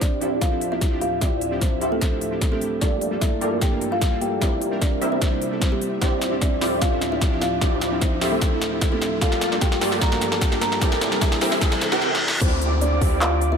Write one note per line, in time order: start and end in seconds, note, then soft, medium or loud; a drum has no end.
0.00 2.78 D2 medium
0.00 2.78 A2 medium
0.00 0.19 F3 medium
0.00 4.37 F3 medium
0.00 0.19 C4 medium
0.00 0.19 C4 loud
0.00 2.78 C4 medium
0.00 0.19 D4 medium
0.00 0.33 D4 medium
0.00 0.19 E4 medium
0.00 0.19 F4 medium
0.00 0.19 G4 medium
0.00 0.20 G4 medium
0.00 2.78 G4 medium
0.00 0.19 D5 loud
0.00 0.33 D5 medium
0.00 2.78 E5 medium
0.00 kick medium
0.00 snare soft
0.00 closed hi-hat medium
0.00 riser medium
0.20 0.49 F3 medium
0.20 0.49 C4 medium
0.20 1.19 C4 medium
0.20 0.49 D4 medium
0.20 1.19 E4 medium
0.20 0.50 E4 medium
0.20 1.19 F4 medium
0.20 1.19 G4 medium
0.20 0.50 A4 medium
0.20 1.19 D5 medium
0.20 closed hi-hat medium
0.41 0.65 F4 medium
0.41 0.65 F5 medium
0.41 kick medium
0.41 snare soft
0.41 closed hi-hat medium
0.51 0.69 F3 medium
0.51 0.69 C4 medium
0.51 0.69 D4 medium
0.51 0.70 E4 medium
0.51 0.70 A4 medium
0.61 closed hi-hat medium
0.71 0.89 F3 medium
0.71 0.89 C4 medium
0.71 0.89 D4 medium
0.71 0.95 E4 medium
0.71 0.90 E4 medium
0.71 0.90 G4 medium
0.71 0.95 E5 medium
0.81 kick medium
0.81 snare medium
0.81 closed hi-hat medium
0.91 1.19 F3 medium
0.91 1.19 C4 medium
0.91 1.19 D4 medium
0.91 1.19 E4 medium
0.91 1.20 G4 loud
1.01 1.17 F4 medium
1.01 1.17 F5 medium
1.01 closed hi-hat medium
1.20 1.27 F3 medium
1.20 1.28 C4 medium
1.20 1.79 C4 loud
1.20 1.28 D4 medium
1.20 1.79 E4 medium
1.20 1.53 E4 medium
1.20 1.28 E4 medium
1.20 1.79 F4 medium
1.20 1.79 G4 medium
1.20 1.28 G4 medium
1.20 1.79 D5 loud
1.20 1.53 E5 medium
1.20 kick medium
1.20 snare soft
1.20 closed hi-hat medium
1.41 closed hi-hat medium
1.51 1.79 F3 medium
1.51 1.79 C4 medium
1.51 1.79 D4 medium
1.51 1.79 E4 medium
1.51 1.80 G4 medium
1.61 1.85 C4 medium
1.61 1.85 C5 medium
1.61 kick medium
1.61 snare medium
1.61 closed hi-hat medium
1.80 2.09 F3 medium
1.80 2.09 C4 medium
1.80 1.99 C4 medium
1.80 2.09 D4 medium
1.80 1.99 E4 medium
1.80 2.10 E4 medium
1.80 1.99 F4 medium
1.80 1.99 G4 medium
1.80 2.10 A4 medium
1.80 1.99 E5 loud
1.80 closed hi-hat medium
1.92 2.15 A3 medium
1.92 2.15 A4 medium
2.01 kick medium
2.01 snare medium
2.01 closed hi-hat medium
2.11 2.29 F3 medium
2.11 2.29 C4 medium
2.11 2.29 D4 medium
2.11 2.30 E4 medium
2.11 2.30 A4 medium
2.21 closed hi-hat medium
2.31 2.49 F3 medium
2.31 2.49 C4 medium
2.31 2.49 D4 medium
2.31 2.50 E4 medium
2.31 2.50 G4 medium
2.41 kick loud
2.41 snare medium
2.41 closed hi-hat medium
2.51 2.79 F3 medium
2.51 2.75 A3 medium
2.51 2.79 C4 medium
2.51 2.79 D4 medium
2.51 2.79 E4 medium
2.51 2.80 G4 loud
2.51 2.75 A4 medium
2.61 closed hi-hat medium
2.80 4.40 G2 medium
2.80 2.87 G3 medium
2.80 2.88 A#3 medium
2.80 4.40 A#3 medium
2.80 3.39 A#3 loud
2.80 2.88 D4 medium
2.80 3.13 D4 medium
2.80 3.39 F4 medium
2.80 2.88 F4 medium
2.80 3.39 G4 medium
2.80 4.40 A4 medium
2.80 3.39 A4 medium
2.80 2.88 A4 medium
2.80 3.39 D5 loud
2.80 3.13 D5 medium
2.80 kick medium
2.80 snare medium
2.80 closed hi-hat medium
3.01 closed hi-hat medium
3.11 3.39 G3 medium
3.11 3.39 A#3 medium
3.11 3.39 D4 medium
3.11 3.39 F4 medium
3.11 3.40 A4 medium
3.21 3.53 E4 medium
3.21 3.53 E5 medium
3.21 kick medium
3.21 snare medium
3.21 closed hi-hat medium
3.40 3.69 G3 medium
3.40 3.69 A#3 medium
3.40 4.39 A#3 medium
3.40 3.69 D4 medium
3.40 4.39 F4 medium
3.40 3.70 F4 medium
3.40 4.39 G4 medium
3.40 4.39 A4 medium
3.40 3.70 A#4 medium
3.40 4.39 D5 medium
3.40 closed hi-hat medium
3.61 3.85 G4 medium
3.61 3.85 G5 medium
3.61 kick loud
3.61 snare medium
3.61 closed hi-hat medium
3.71 3.89 G3 medium
3.71 3.89 A#3 medium
3.71 3.89 D4 medium
3.71 3.90 F4 medium
3.71 3.90 A#4 medium
3.81 closed hi-hat medium
3.91 4.09 G3 medium
3.91 4.09 A#3 medium
3.91 4.09 D4 medium
3.91 4.15 F4 medium
3.91 4.10 F4 medium
3.91 4.10 A4 medium
3.91 4.15 F5 medium
4.01 kick loud
4.01 snare medium
4.01 closed hi-hat medium
4.11 4.39 G3 medium
4.11 4.39 A#3 medium
4.11 4.39 D4 medium
4.11 4.39 F4 medium
4.11 4.40 A4 loud
4.21 4.37 G4 medium
4.21 4.37 G5 medium
4.21 closed hi-hat medium
4.40 6.00 C3 medium
4.40 4.47 G3 medium
4.40 6.00 A#3 medium
4.40 4.48 C4 medium
4.40 4.99 C4 loud
4.40 4.48 D4 medium
4.40 6.00 D4 medium
4.40 4.99 E4 medium
4.40 4.73 E4 medium
4.40 4.48 E4 medium
4.40 4.99 G4 medium
4.40 4.99 A#4 medium
4.40 4.48 A#4 medium
4.40 4.99 D5 loud
4.40 4.73 E5 medium
4.40 9.17 E5 medium
4.40 kick medium
4.40 snare medium
4.40 closed hi-hat medium
4.62 closed hi-hat medium
4.71 4.99 G3 medium
4.71 4.99 C4 medium
4.71 4.99 D4 medium
4.71 4.99 E4 medium
4.71 5.00 A#4 medium
4.81 5.05 D4 medium
4.81 5.05 D5 medium
4.81 kick loud
4.81 snare medium
4.81 closed hi-hat medium
5.00 5.29 G3 medium
5.00 5.29 C4 medium
5.00 5.19 C4 loud
5.00 5.29 D4 medium
5.00 5.19 E4 medium
5.00 5.30 E4 medium
5.00 5.19 G4 medium
5.00 5.19 A#4 medium
5.00 5.30 C5 medium
5.00 5.19 E5 loud
5.00 closed hi-hat medium
5.12 5.35 C4 medium
5.12 5.35 C5 medium
5.21 kick medium
5.21 snare medium
5.21 closed hi-hat medium
5.31 5.49 G3 medium
5.31 5.49 C4 medium
5.31 5.49 D4 medium
5.31 5.50 E4 medium
5.31 5.50 C5 medium
5.42 closed hi-hat medium
5.51 5.59 G3 medium
5.51 5.60 C4 medium
5.51 5.60 D4 medium
5.51 5.60 E4 medium
5.51 5.61 A4 medium
5.61 5.99 G3 medium
5.61 5.99 C4 medium
5.61 5.99 D4 medium
5.61 5.99 E4 medium
5.61 6.00 C5 loud
5.61 kick loud
5.61 snare medium
5.61 closed hi-hat medium
5.72 5.96 G3 medium
5.72 5.95 G4 medium
5.82 closed hi-hat medium
6.00 9.18 D2 medium
6.00 9.18 A2 medium
6.00 6.07 F3 medium
6.00 9.18 F3 medium
6.00 6.08 C4 medium
6.00 9.18 C4 medium
6.00 6.59 C4 loud
6.00 6.33 C4 medium
6.00 6.08 D4 medium
6.00 6.59 E4 medium
6.00 6.08 E4 medium
6.00 6.59 F4 medium
6.00 9.18 G4 medium
6.00 6.59 G4 medium
6.00 6.08 G4 medium
6.00 6.33 C5 loud
6.00 6.59 D5 loud
6.00 kick medium
6.00 snare medium
6.00 closed hi-hat medium
6.21 snare medium
6.21 closed hi-hat medium
6.31 6.59 F3 medium
6.31 6.59 C4 medium
6.31 6.59 D4 medium
6.31 6.59 E4 medium
6.31 6.60 G4 medium
6.41 6.73 D4 medium
6.41 6.74 D5 medium
6.41 kick medium
6.41 snare medium
6.41 closed hi-hat medium
6.60 6.89 F3 medium
6.60 6.89 C4 medium
6.60 7.59 C4 medium
6.60 6.89 D4 medium
6.60 7.59 E4 medium
6.60 6.90 E4 medium
6.60 7.59 F4 medium
6.60 7.59 G4 medium
6.60 6.90 A4 medium
6.60 7.59 D5 medium
6.60 snare medium
6.60 open hi-hat medium
6.81 7.05 F4 medium
6.81 7.05 F5 medium
6.81 kick loud
6.81 snare medium
6.81 closed hi-hat medium
6.91 7.09 F3 medium
6.91 7.09 C4 medium
6.91 7.09 D4 medium
6.91 7.10 E4 medium
6.91 7.10 A4 medium
7.01 snare medium
7.01 closed hi-hat medium
7.11 7.29 F3 medium
7.11 7.29 C4 medium
7.11 7.29 D4 medium
7.11 7.35 E4 medium
7.11 7.30 E4 medium
7.11 7.30 G4 medium
7.11 7.35 E5 medium
7.21 kick loud
7.21 snare medium
7.21 closed hi-hat medium
7.31 7.59 F3 medium
7.31 7.59 C4 medium
7.31 7.59 D4 medium
7.31 7.59 E4 medium
7.31 7.60 G4 loud
7.41 7.57 F4 medium
7.41 7.57 F5 medium
7.41 snare medium
7.41 closed hi-hat medium
7.60 7.67 F3 medium
7.60 7.68 C4 medium
7.60 8.19 C4 loud
7.60 7.68 D4 medium
7.60 8.19 E4 medium
7.60 7.93 E4 medium
7.60 7.68 E4 medium
7.60 8.19 F4 medium
7.60 8.19 G4 medium
7.60 7.68 G4 medium
7.60 8.19 D5 loud
7.60 7.93 E5 loud
7.60 kick loud
7.60 snare medium
7.60 closed hi-hat medium
7.81 snare medium
7.81 closed hi-hat medium
7.91 8.19 F3 medium
7.91 8.19 C4 medium
7.91 8.19 D4 medium
7.91 8.19 E4 medium
7.91 8.20 G4 medium
8.01 8.25 C4 medium
8.01 8.25 C5 medium
8.01 kick medium
8.01 snare medium
8.01 closed hi-hat medium
8.20 8.49 F3 medium
8.20 8.49 C4 medium
8.20 8.39 C4 loud
8.20 8.49 D4 medium
8.20 8.39 E4 medium
8.20 8.50 E4 medium
8.20 8.39 F4 medium
8.20 8.39 G4 loud
8.20 8.50 A4 medium
8.20 8.39 E5 loud
8.20 snare medium
8.20 open hi-hat medium
8.32 8.55 A3 medium
8.32 8.55 A4 medium
8.41 kick loud
8.41 snare medium
8.41 closed hi-hat medium
8.51 8.69 F3 medium
8.51 8.69 C4 medium
8.51 8.69 D4 medium
8.51 8.70 E4 medium
8.51 8.70 A4 medium
8.61 snare medium
8.61 closed hi-hat medium
8.71 8.89 F3 medium
8.71 8.89 C4 medium
8.71 8.89 D4 medium
8.71 8.90 E4 medium
8.71 8.90 G4 medium
8.81 kick loud
8.81 snare medium
8.81 closed hi-hat medium
8.91 9.19 F3 loud
8.91 9.15 A3 medium
8.91 9.19 C4 medium
8.91 9.19 D4 medium
8.91 9.19 E4 medium
8.91 9.20 G4 loud
8.91 9.15 A4 loud
9.02 snare medium
9.02 closed hi-hat medium
9.20 10.80 G2 medium
9.20 10.80 F3 medium
9.20 9.27 G3 medium
9.20 9.28 A#3 medium
9.20 10.80 A#3 medium
9.20 9.79 A#3 loud
9.20 9.28 D4 medium
9.20 9.53 F4 medium
9.20 9.79 F4 medium
9.20 9.28 F4 medium
9.20 9.79 G4 medium
9.20 10.80 A4 medium
9.20 9.79 A4 medium
9.20 9.28 A4 medium
9.20 9.79 D5 loud
9.20 9.53 F5 medium
9.20 kick loud
9.20 snare medium
9.20 closed hi-hat medium
9.32 snare medium
9.41 snare medium
9.41 closed hi-hat medium
9.51 9.79 G3 medium
9.51 9.79 A#3 medium
9.51 9.79 D4 medium
9.51 9.79 F4 medium
9.51 9.80 A4 medium
9.51 snare medium
9.61 9.93 G4 medium
9.61 9.93 G5 loud
9.61 kick loud
9.61 snare medium
9.61 closed hi-hat medium
9.72 snare medium
9.80 10.09 G3 medium
9.80 10.09 A#3 medium
9.80 10.79 A#3 medium
9.80 10.09 D4 medium
9.80 10.79 F4 medium
9.80 10.10 F4 medium
9.80 10.79 G4 medium
9.80 10.79 A4 medium
9.80 10.10 A#4 medium
9.80 10.79 D5 loud
9.80 snare loud
9.80 open hi-hat loud
9.92 snare medium
10.01 10.25 A#4 medium
10.01 10.25 A#5 loud
10.01 kick loud
10.01 snare loud
10.01 closed hi-hat medium
10.11 10.29 G3 medium
10.11 10.29 A#3 medium
10.11 10.29 D4 medium
10.11 10.30 F4 medium
10.11 10.30 A#4 medium
10.11 snare medium
10.21 snare medium
10.21 closed hi-hat medium
10.31 10.49 G3 medium
10.31 10.49 A#3 medium
10.31 10.49 D4 medium
10.31 10.50 F4 medium
10.31 10.55 A4 medium
10.31 10.50 A4 medium
10.31 10.55 A5 medium
10.31 snare medium
10.41 kick loud
10.41 snare loud
10.41 closed hi-hat medium
10.51 10.79 G3 loud
10.51 10.79 A#3 medium
10.51 10.79 D4 medium
10.51 10.79 F4 medium
10.51 10.80 A4 loud
10.51 snare medium
10.61 10.77 A#4 medium
10.61 10.77 A#5 medium
10.61 snare loud
10.61 closed hi-hat medium
10.72 snare medium
10.80 12.00 C3 medium
10.80 10.87 G3 medium
10.80 12.00 A#3 medium
10.80 10.88 C4 medium
10.80 11.39 C4 loud
10.80 10.88 D4 medium
10.80 12.00 D4 medium
10.80 11.39 E4 medium
10.80 12.00 E4 medium
10.80 10.88 E4 medium
10.80 11.39 G4 medium
10.80 11.13 A4 medium
10.80 11.39 A#4 medium
10.80 10.88 A#4 medium
10.80 11.39 D5 loud
10.80 kick loud
10.80 snare medium
10.80 closed hi-hat medium
10.92 snare medium
11.01 snare loud
11.01 closed hi-hat medium
11.11 11.39 G3 medium
11.11 11.39 C4 medium
11.11 11.39 D4 medium
11.11 11.39 E4 medium
11.11 11.40 A#4 medium
11.11 snare medium
11.21 11.45 E4 medium
11.21 11.45 E5 medium
11.21 kick loud
11.21 snare loud
11.21 closed hi-hat medium
11.32 snare medium
11.40 11.69 G3 medium
11.40 11.69 C4 medium
11.40 11.59 C4 loud
11.40 11.69 D4 medium
11.40 11.59 E4 medium
11.40 11.70 E4 medium
11.40 11.59 G4 medium
11.40 11.59 A#4 medium
11.40 11.70 C5 medium
11.40 11.59 E5 loud
11.40 snare loud
11.40 open hi-hat medium
11.52 11.75 E4 medium
11.52 11.75 E5 loud
11.52 snare loud
11.61 kick loud
11.61 snare loud
11.61 closed hi-hat medium
11.61 reverse cymbal medium
11.71 11.89 G3 medium
11.71 11.89 C4 medium
11.71 11.89 D4 medium
11.71 11.90 E4 medium
11.71 11.90 C5 medium
11.71 snare loud
11.81 snare loud
11.81 closed hi-hat medium
11.91 12.00 G3 medium
11.91 12.00 C4 medium
11.91 12.01 C4 medium
11.91 12.00 D4 medium
11.91 12.01 E4 medium
11.91 12.00 E4 medium
11.91 12.01 G4 medium
11.91 12.01 A4 medium
11.91 12.01 A#4 medium
11.91 12.01 G5 loud
11.91 snare loud
12.01 snare medium
12.15 snare medium
12.28 snare loud
12.41 13.00 D2 medium
12.41 12.73 C4 medium
12.41 12.99 C4 loud
12.41 12.99 E4 medium
12.41 12.99 F4 loud
12.41 12.99 G4 medium
12.41 12.73 C5 loud
12.41 12.99 D5 loud
12.41 12.99 D6 loud
12.41 kick loud
12.41 closed hi-hat medium
12.41 crash loud
12.41 downlifter medium
12.61 closed hi-hat medium
12.81 13.13 D4 medium
12.81 13.13 D5 medium
12.81 closed hi-hat medium
13.01 13.57 D2 loud
13.01 13.57 C4 medium
13.01 13.57 E4 medium
13.01 13.57 F4 medium
13.01 13.57 G4 medium
13.01 13.57 D5 medium
13.01 kick loud
13.01 open hi-hat loud
13.21 13.45 F4 medium
13.21 13.45 F5 medium
13.21 clap loud
13.21 closed hi-hat medium
13.41 closed hi-hat medium
13.52 13.57 E4 medium
13.52 13.57 E5 medium